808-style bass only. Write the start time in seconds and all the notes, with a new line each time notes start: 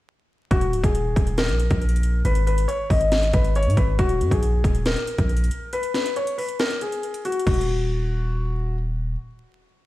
0.51 D#1
0.73 C#1
0.84 D#1
1.16 D#1
1.49 A#1
1.71 A#1
2.25 G#1
2.90 G#1
3.34 G#1
3.66 G#2
3.77 G#1
3.99 D#1
4.21 F#2
4.31 A#1
4.64 D#1
5.18 A#1
7.47 D#1